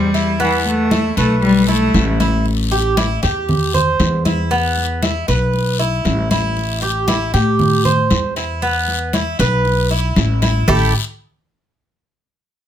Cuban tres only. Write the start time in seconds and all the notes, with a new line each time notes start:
Already playing: C5
0.14 E4
0.40 B3
0.91 E4
1.17 B4
1.68 E4
2.20 E4
2.71 G4
2.97 E4
3.23 G4
3.74 C5
4.25 E4
4.51 B3
5.03 E4
5.28 B4
5.79 E4
6.31 E4
6.82 G4
7.08 E4
7.34 G4
7.85 C5
8.36 E4
8.62 B3
9.14 E4
9.40 B4
9.91 E4
10.42 E4
10.68 A3 E4 G4